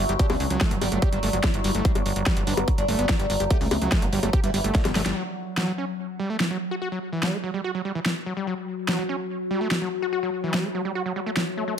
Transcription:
Already playing: synth drone F#3
0.09 analog synth bass G1, acid bass G4, closed hi-hat
0.19 oud D4, acid bass G4, kick, closed hi-hat
0.30 analog synth bass C#2, acid bass G3, open hi-hat, high bongo
0.40 analog synth bass C#2, open hi-hat
0.50 analog synth bass C#2, acid bass F#3, closed hi-hat
0.61 acid bass A3, kick, snare, closed hi-hat
0.71 analog synth bass G1, acid bass B3, closed hi-hat
0.81 analog synth bass G1, acid bass G3, oud D4, open hi-hat, high bongo
0.92 analog synth bass G1, acid bass A3, closed hi-hat
1.02 acid bass G4, kick, closed hi-hat
1.13 analog synth bass G1, acid bass G3, oud D4, closed hi-hat
1.23 analog synth bass G1, acid bass A3, open hi-hat
1.33 analog synth bass G1, acid bass F#3, closed hi-hat
1.44 oud E4, kick, snare, closed hi-hat, high bongo
1.54 analog synth bass G1, closed hi-hat
1.64 analog synth bass G1, acid bass G3, open hi-hat
1.75 analog synth bass G1, acid bass A3, closed hi-hat
1.85 acid bass G3, oud D4, kick, closed hi-hat
1.95 analog synth bass G1, closed hi-hat, high bongo
2.06 analog synth bass G1, open hi-hat
2.16 analog synth bass G1, closed hi-hat
2.26 acid bass G3, kick, snare, closed hi-hat
2.37 analog synth bass G1, acid bass G3, closed hi-hat
2.47 analog synth bass G1, oud B3, acid bass D4, open hi-hat
2.57 analog synth bass G1, closed hi-hat, high bongo
2.68 kick, closed hi-hat
2.78 analog synth bass G1, oud D4, closed hi-hat
2.88 analog synth bass G1, acid bass A3, open hi-hat
2.99 analog synth bass G1, acid bass B3, closed hi-hat
3.09 oud D4, kick, snare, closed hi-hat, high bongo
3.19 analog synth bass G1, acid bass G3, closed hi-hat
3.30 analog synth bass G1, open hi-hat
3.40 analog synth bass G1, acid bass G4, closed hi-hat
3.50 oud A3, acid bass G4, kick, closed hi-hat
3.61 analog synth bass C#2, acid bass G3, open hi-hat
3.71 analog synth bass C#2, open hi-hat, high bongo
3.82 analog synth bass C#2, acid bass F#3, closed hi-hat
3.92 acid bass A3, kick, snare, closed hi-hat
4.02 analog synth bass G1, acid bass B3, closed hi-hat
4.13 analog synth bass G1, oud F#3, acid bass G3, open hi-hat
4.23 analog synth bass G1, acid bass A3, closed hi-hat, high bongo
4.33 acid bass G4, kick, closed hi-hat
4.44 analog synth bass G1, oud E3, acid bass G3, closed hi-hat
4.54 analog synth bass G1, acid bass G3, open hi-hat
4.64 analog synth bass G1, acid bass A3, closed hi-hat
4.75 oud D3, kick, snare, closed hi-hat
4.85 analog synth bass G1, snare, closed hi-hat, high bongo
4.95 analog synth bass G1, acid bass A3, snare, open hi-hat
5.06 analog synth bass G1, acid bass G3, snare, closed hi-hat
5.16 acid bass F#3, synth drone F#3
5.57 acid bass F#3, snare
5.68 acid bass F#3
5.78 acid bass C#4
6.20 acid bass G3
6.30 acid bass A3
6.40 snare
6.51 acid bass F#3
6.71 acid bass F#4
6.82 acid bass F#4
6.92 acid bass F#3
7.13 acid bass E3
7.23 acid bass G3, snare
7.33 acid bass A3
7.44 acid bass F#3
7.54 acid bass G3
7.64 acid bass F#4
7.75 acid bass F#3
7.85 acid bass G3
7.95 acid bass E3
8.06 snare
8.26 acid bass F#3
8.37 acid bass G3
8.47 acid bass F#3
8.88 acid bass F#3, snare
8.99 acid bass F#3
9.09 acid bass C#4
9.51 acid bass G3
9.61 acid bass A3
9.71 snare
9.82 acid bass F#3
10.02 acid bass F#4
10.13 acid bass F#4
10.23 acid bass F#3
10.44 acid bass E3
10.54 acid bass G3, snare
10.64 acid bass A3
10.75 acid bass F#3
10.85 acid bass G3
10.95 acid bass F#4
11.06 acid bass F#3
11.16 acid bass G3
11.26 acid bass A3
11.37 snare
11.57 acid bass A3
11.68 acid bass A3

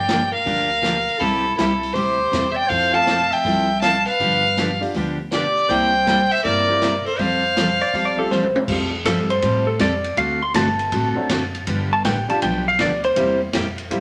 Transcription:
Already playing: upright bass G1, clarinet D5, fiddle G5
0.08 steel-string acoustic guitar D3 F3 A#3 D4 G4, snare, closed hi-hat
0.32 clarinet A#4, fiddle F5
0.45 upright bass D2, steel-string acoustic guitar D3 F3 A#3 D4 G4, kick, open hi-hat
0.82 steel-string acoustic guitar D3 F3 A#3 D4 G4, snare, closed hi-hat
1.09 open hi-hat
1.19 upright bass C2, steel-string acoustic guitar C3 G3 C4 E4 G4, clarinet E4, fiddle A4, kick, open hi-hat
1.55 upright bass C2, steel-string acoustic guitar C3 G3 C4 E4 G4, clarinet E4, fiddle A4, snare, closed hi-hat
1.83 open hi-hat
1.93 upright bass D2, steel-string acoustic guitar C3 G3 C4 E4 G4, clarinet G4, fiddle C5, kick, open hi-hat
2.32 upright bass E2, steel-string acoustic guitar C3 G3 C4 E4 G4, snare, closed hi-hat
2.51 clarinet C5 D5, fiddle E5
2.56 fiddle G5
2.67 upright bass F2, steel-string acoustic guitar F3 C4 E4 A4, clarinet C5, fiddle F5, kick, open hi-hat
2.93 upright piano F3 A3 C4 F4, clarinet F5, fiddle A5
3.07 steel-string acoustic guitar F3 C4 E4 A4, snare, closed hi-hat
3.31 clarinet E5, fiddle G5, open hi-hat
3.45 upright bass C2, steel-string acoustic guitar F3 C4 E4 A4, kick, open hi-hat
3.81 steel-string acoustic guitar F3 C4 E4 A4, clarinet F5, fiddle A5, snare, closed hi-hat
4.06 clarinet B4, fiddle F5, open hi-hat
4.20 upright bass G2, steel-string acoustic guitar D3 F3 B3 D4 G4, kick, open hi-hat
4.57 steel-string acoustic guitar D3 F3 B3 D4 G4, snare, closed hi-hat
4.81 upright piano G3 B3 D4 F4 G4, open hi-hat
4.94 upright bass D2, steel-string acoustic guitar D3 F3 B3 D4 G4, kick, open hi-hat
5.32 steel-string acoustic guitar D3 F3 B3 D4 G4, clarinet G4, fiddle D5, snare, closed hi-hat
5.57 open hi-hat
5.69 upright bass C2, steel-string acoustic guitar C3 G3 A#3 E4 G4, clarinet C5, fiddle G5, kick, open hi-hat
6.06 steel-string acoustic guitar C3 G3 A#3 E4 G4, snare, closed hi-hat
6.31 clarinet C5, fiddle E5, open hi-hat
6.43 upright bass G1, steel-string acoustic guitar C3 G3 A#3 E4 G4, clarinet A#4, fiddle D5, kick, open hi-hat
6.68 upright piano G3 A#3 C4 E4 G4
6.81 steel-string acoustic guitar C3 G3 A#3 E4 G4, snare, closed hi-hat
7.05 clarinet A4, fiddle C5, open hi-hat
7.18 upright bass F2, steel-string acoustic guitar F3 G3 C4 G4 A4, clarinet C5, fiddle F5, kick, open hi-hat
7.56 steel-string acoustic guitar F3 G3 C4 G4 A4, snare, closed hi-hat
7.81 electric slide guitar D5, open hi-hat
7.94 upright bass C2, steel-string acoustic guitar F3 G3 C4 G4 A4, electric slide guitar F5, kick, open hi-hat
8.05 electric slide guitar D5
8.16 upright piano G3 A3 C4 F4 G4, electric slide guitar A4
8.31 steel-string acoustic guitar F3 G3 C4 G4 A4, electric slide guitar C5, snare
8.43 high tom
8.56 high tom
8.68 upright bass F2, steel-string acoustic guitar F3 G3 C4 G4 A4, upright piano G3 A3 C4 F4 G4, kick, crash
9.05 upright bass G2, steel-string acoustic guitar F3 G3 C4 G4 A4, upright piano G3 A3 C4 F4 G4, electric slide guitar A4, kick, snare, hi-hat pedal, ride
9.30 electric slide guitar C5, ride
9.42 upright bass A2, steel-string acoustic guitar F3 G3 C4 G4 A4, kick, ride
9.67 electric slide guitar A4
9.79 upright bass F2, steel-string acoustic guitar F3 G3 C4 G4 A4, electric slide guitar D5, kick, snare, hi-hat pedal, ride
10.04 ride
10.16 upright bass D2, steel-string acoustic guitar D3 A3 C4 F#4 A4, electric slide guitar F5, kick, ride
10.42 electric slide guitar C6
10.54 upright bass G1, steel-string acoustic guitar D3 A3 C4 F#4 A4, electric slide guitar A5, kick, snare, hi-hat pedal, ride
10.79 ride
10.92 upright bass A1, steel-string acoustic guitar D3 A3 C4 F#4 A4, kick, ride
11.15 upright piano F#3 A3 C4 D4 F#4
11.29 upright bass F#1, steel-string acoustic guitar D3 A3 C4 F#4 A4, kick, snare, hi-hat pedal, ride
11.55 ride
11.67 upright bass G1, steel-string acoustic guitar D3 F3 B3 D4 G4, kick, ride
11.93 electric slide guitar A5
12.04 upright bass A1, steel-string acoustic guitar D3 F3 B3 D4 G4, electric slide guitar G5, kick, snare, hi-hat pedal, ride
12.29 upright piano G3 B3 D4 F4 G4, electric slide guitar A5, muted upright bass stroke, ride
12.41 upright bass B1, steel-string acoustic guitar D3 F3 B3 D4 G4, electric slide guitar G5, kick, ride
12.68 electric slide guitar F5
12.78 upright bass D2, steel-string acoustic guitar D3 F3 B3 D4 G4, electric slide guitar D5, kick, snare, hi-hat pedal, ride
13.04 electric slide guitar C5, ride
13.16 upright bass E2, steel-string acoustic guitar C3 G3 A#3 E4 G4, upright piano G3 A#3 C4 E4 G4, kick, ride
13.53 upright bass F2, steel-string acoustic guitar C3 G3 A#3 E4 G4, kick, snare, hi-hat pedal, ride
13.78 ride
13.90 upright bass G2, steel-string acoustic guitar C3 G3 A#3 E4 G4, upright piano G3 A#3 C4 E4 G4, kick, ride

